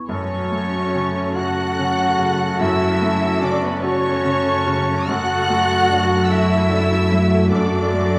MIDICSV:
0, 0, Header, 1, 12, 480
1, 0, Start_track
1, 0, Key_signature, 3, "minor"
1, 0, Tempo, 851064
1, 55, Time_signature, 6, 3, 24, 8
1, 1016, Tempo, 818554
1, 4762, End_track
2, 0, Start_track
2, 0, Title_t, "Violin section"
2, 0, Program_c, 0, 48
2, 48, Note_on_c, 0, 85, 99
2, 754, Note_off_c, 0, 85, 0
2, 776, Note_on_c, 0, 90, 108
2, 1490, Note_off_c, 0, 90, 0
2, 1494, Note_on_c, 0, 88, 108
2, 1960, Note_off_c, 0, 88, 0
2, 1975, Note_on_c, 0, 86, 101
2, 2090, Note_off_c, 0, 86, 0
2, 2092, Note_on_c, 0, 83, 87
2, 2205, Note_on_c, 0, 85, 118
2, 2208, Note_off_c, 0, 83, 0
2, 2927, Note_off_c, 0, 85, 0
2, 2940, Note_on_c, 0, 90, 127
2, 3644, Note_on_c, 0, 88, 114
2, 3649, Note_off_c, 0, 90, 0
2, 4362, Note_on_c, 0, 86, 101
2, 4367, Note_off_c, 0, 88, 0
2, 4762, Note_off_c, 0, 86, 0
2, 4762, End_track
3, 0, Start_track
3, 0, Title_t, "Oboe"
3, 0, Program_c, 1, 68
3, 51, Note_on_c, 1, 81, 62
3, 756, Note_off_c, 1, 81, 0
3, 773, Note_on_c, 1, 81, 74
3, 2179, Note_off_c, 1, 81, 0
3, 2202, Note_on_c, 1, 81, 78
3, 2925, Note_off_c, 1, 81, 0
3, 2938, Note_on_c, 1, 81, 83
3, 4179, Note_off_c, 1, 81, 0
3, 4366, Note_on_c, 1, 81, 71
3, 4762, Note_off_c, 1, 81, 0
3, 4762, End_track
4, 0, Start_track
4, 0, Title_t, "Flute section"
4, 0, Program_c, 2, 73
4, 54, Note_on_c, 2, 73, 72
4, 757, Note_off_c, 2, 73, 0
4, 774, Note_on_c, 2, 78, 91
4, 1484, Note_on_c, 2, 76, 87
4, 1488, Note_off_c, 2, 78, 0
4, 1959, Note_on_c, 2, 74, 78
4, 1965, Note_off_c, 2, 76, 0
4, 2075, Note_on_c, 2, 71, 80
4, 2082, Note_off_c, 2, 74, 0
4, 2193, Note_on_c, 2, 73, 96
4, 2200, Note_off_c, 2, 71, 0
4, 2785, Note_off_c, 2, 73, 0
4, 2936, Note_on_c, 2, 78, 101
4, 3633, Note_off_c, 2, 78, 0
4, 3648, Note_on_c, 2, 76, 91
4, 4369, Note_off_c, 2, 76, 0
4, 4370, Note_on_c, 2, 74, 80
4, 4762, Note_off_c, 2, 74, 0
4, 4762, End_track
5, 0, Start_track
5, 0, Title_t, "Violin section"
5, 0, Program_c, 3, 48
5, 46, Note_on_c, 3, 73, 79
5, 753, Note_off_c, 3, 73, 0
5, 780, Note_on_c, 3, 78, 94
5, 1485, Note_on_c, 3, 76, 92
5, 1491, Note_off_c, 3, 78, 0
5, 1956, Note_off_c, 3, 76, 0
5, 1969, Note_on_c, 3, 74, 86
5, 2087, Note_off_c, 3, 74, 0
5, 2097, Note_on_c, 3, 71, 78
5, 2211, Note_off_c, 3, 71, 0
5, 2212, Note_on_c, 3, 73, 98
5, 2943, Note_on_c, 3, 78, 109
5, 2945, Note_off_c, 3, 73, 0
5, 3636, Note_off_c, 3, 78, 0
5, 3649, Note_on_c, 3, 76, 95
5, 4367, Note_on_c, 3, 74, 83
5, 4370, Note_off_c, 3, 76, 0
5, 4762, Note_off_c, 3, 74, 0
5, 4762, End_track
6, 0, Start_track
6, 0, Title_t, "Clarinet"
6, 0, Program_c, 4, 71
6, 55, Note_on_c, 4, 66, 58
6, 758, Note_off_c, 4, 66, 0
6, 782, Note_on_c, 4, 66, 66
6, 2183, Note_off_c, 4, 66, 0
6, 2206, Note_on_c, 4, 66, 76
6, 2927, Note_off_c, 4, 66, 0
6, 2944, Note_on_c, 4, 66, 73
6, 4182, Note_off_c, 4, 66, 0
6, 4374, Note_on_c, 4, 66, 68
6, 4762, Note_off_c, 4, 66, 0
6, 4762, End_track
7, 0, Start_track
7, 0, Title_t, "Viola section"
7, 0, Program_c, 5, 48
7, 51, Note_on_c, 5, 61, 64
7, 52, Note_on_c, 5, 69, 59
7, 2916, Note_off_c, 5, 61, 0
7, 2917, Note_off_c, 5, 69, 0
7, 2937, Note_on_c, 5, 57, 78
7, 2939, Note_on_c, 5, 69, 79
7, 4762, Note_off_c, 5, 57, 0
7, 4762, Note_off_c, 5, 69, 0
7, 4762, End_track
8, 0, Start_track
8, 0, Title_t, "Cello section"
8, 0, Program_c, 6, 48
8, 52, Note_on_c, 6, 61, 75
8, 756, Note_off_c, 6, 61, 0
8, 774, Note_on_c, 6, 66, 79
8, 1484, Note_on_c, 6, 64, 85
8, 1488, Note_off_c, 6, 66, 0
8, 1955, Note_off_c, 6, 64, 0
8, 1961, Note_on_c, 6, 62, 83
8, 2081, Note_on_c, 6, 59, 76
8, 2083, Note_off_c, 6, 62, 0
8, 2197, Note_on_c, 6, 61, 88
8, 2203, Note_off_c, 6, 59, 0
8, 2935, Note_on_c, 6, 66, 100
8, 2937, Note_off_c, 6, 61, 0
8, 3647, Note_off_c, 6, 66, 0
8, 3649, Note_on_c, 6, 64, 91
8, 4355, Note_off_c, 6, 64, 0
8, 4370, Note_on_c, 6, 62, 77
8, 4762, Note_off_c, 6, 62, 0
8, 4762, End_track
9, 0, Start_track
9, 0, Title_t, "French horn section"
9, 0, Program_c, 7, 60
9, 49, Note_on_c, 7, 57, 58
9, 49, Note_on_c, 7, 66, 64
9, 2915, Note_off_c, 7, 57, 0
9, 2915, Note_off_c, 7, 66, 0
9, 2948, Note_on_c, 7, 57, 78
9, 2950, Note_on_c, 7, 66, 73
9, 4762, Note_off_c, 7, 57, 0
9, 4762, Note_off_c, 7, 66, 0
9, 4762, End_track
10, 0, Start_track
10, 0, Title_t, "Grand piano"
10, 0, Program_c, 8, 0
10, 0, Control_c, 8, 64, 127
10, 0, Note_on_c, 8, 47, 30
10, 0, Note_on_c, 8, 64, 33
10, 0, Note_on_c, 8, 68, 38
10, 50, Note_on_c, 8, 42, 59
10, 64, Control_c, 8, 64, 0
10, 67, Note_off_c, 8, 64, 0
10, 67, Note_off_c, 8, 68, 0
10, 69, Note_off_c, 8, 47, 0
10, 158, Control_c, 8, 64, 127
10, 292, Note_on_c, 8, 57, 50
10, 532, Note_on_c, 8, 61, 48
10, 683, Note_off_c, 8, 57, 0
10, 773, Note_on_c, 8, 66, 53
10, 920, Note_off_c, 8, 61, 0
10, 1010, Note_on_c, 8, 61, 51
10, 1155, Note_off_c, 8, 66, 0
10, 1246, Note_on_c, 8, 49, 53
10, 1394, Note_off_c, 8, 61, 0
10, 1466, Note_off_c, 8, 42, 0
10, 1488, Note_on_c, 8, 42, 69
10, 1503, Control_c, 8, 64, 0
10, 1598, Control_c, 8, 64, 127
10, 1630, Note_off_c, 8, 49, 0
10, 1728, Note_on_c, 8, 57, 57
10, 1968, Note_on_c, 8, 61, 58
10, 2110, Note_off_c, 8, 57, 0
10, 2208, Note_on_c, 8, 66, 64
10, 2350, Note_off_c, 8, 61, 0
10, 2450, Note_on_c, 8, 61, 63
10, 2597, Note_off_c, 8, 66, 0
10, 2697, Note_on_c, 8, 49, 59
10, 2845, Note_off_c, 8, 61, 0
10, 2916, Note_off_c, 8, 42, 0
10, 2940, Note_on_c, 8, 42, 70
10, 2942, Note_off_c, 8, 49, 0
10, 2953, Control_c, 8, 64, 0
10, 3059, Control_c, 8, 64, 127
10, 3182, Note_on_c, 8, 57, 61
10, 3417, Note_on_c, 8, 62, 57
10, 3556, Note_off_c, 8, 57, 0
10, 3644, Note_on_c, 8, 66, 60
10, 3793, Note_off_c, 8, 62, 0
10, 3891, Note_on_c, 8, 62, 54
10, 4030, Note_off_c, 8, 66, 0
10, 4132, Note_on_c, 8, 54, 51
10, 4275, Note_off_c, 8, 62, 0
10, 4346, Note_off_c, 8, 42, 0
10, 4367, Note_on_c, 8, 42, 60
10, 4381, Control_c, 8, 64, 0
10, 4489, Control_c, 8, 64, 127
10, 4517, Note_off_c, 8, 54, 0
10, 4611, Note_on_c, 8, 57, 50
10, 4762, Note_off_c, 8, 42, 0
10, 4762, Note_off_c, 8, 57, 0
10, 4762, End_track
11, 0, Start_track
11, 0, Title_t, "Harp"
11, 0, Program_c, 10, 46
11, 0, Note_on_c, 10, 40, 45
11, 0, Note_on_c, 10, 47, 33
11, 0, Note_on_c, 10, 64, 35
11, 0, Note_on_c, 10, 68, 35
11, 47, Note_on_c, 10, 42, 61
11, 72, Note_off_c, 10, 40, 0
11, 72, Note_off_c, 10, 47, 0
11, 72, Note_off_c, 10, 68, 0
11, 74, Note_off_c, 10, 64, 0
11, 287, Note_on_c, 10, 61, 53
11, 534, Note_on_c, 10, 49, 50
11, 772, Note_off_c, 10, 61, 0
11, 778, Note_on_c, 10, 61, 54
11, 1003, Note_off_c, 10, 49, 0
11, 1010, Note_on_c, 10, 49, 52
11, 1481, Note_off_c, 10, 42, 0
11, 1488, Note_on_c, 10, 42, 74
11, 1724, Note_off_c, 10, 61, 0
11, 1731, Note_on_c, 10, 61, 62
11, 1960, Note_off_c, 10, 49, 0
11, 1967, Note_on_c, 10, 49, 59
11, 2197, Note_off_c, 10, 61, 0
11, 2204, Note_on_c, 10, 61, 66
11, 2444, Note_off_c, 10, 49, 0
11, 2451, Note_on_c, 10, 49, 62
11, 2697, Note_on_c, 10, 66, 65
11, 2935, Note_off_c, 10, 42, 0
11, 2942, Note_on_c, 10, 42, 80
11, 2960, Note_off_c, 10, 61, 0
11, 2962, Note_off_c, 10, 49, 0
11, 3185, Note_on_c, 10, 57, 60
11, 3414, Note_on_c, 10, 54, 59
11, 3645, Note_off_c, 10, 57, 0
11, 3652, Note_on_c, 10, 57, 60
11, 3881, Note_off_c, 10, 54, 0
11, 3888, Note_on_c, 10, 54, 54
11, 4121, Note_off_c, 10, 66, 0
11, 4128, Note_on_c, 10, 66, 59
11, 4366, Note_off_c, 10, 42, 0
11, 4373, Note_on_c, 10, 42, 67
11, 4605, Note_off_c, 10, 57, 0
11, 4612, Note_on_c, 10, 57, 50
11, 4762, Note_off_c, 10, 42, 0
11, 4762, Note_off_c, 10, 54, 0
11, 4762, Note_off_c, 10, 57, 0
11, 4762, Note_off_c, 10, 66, 0
11, 4762, End_track
12, 0, Start_track
12, 0, Title_t, "Double bass section"
12, 0, Program_c, 11, 48
12, 50, Note_on_c, 11, 42, 68
12, 2916, Note_off_c, 11, 42, 0
12, 2938, Note_on_c, 11, 42, 82
12, 4762, Note_off_c, 11, 42, 0
12, 4762, End_track
0, 0, End_of_file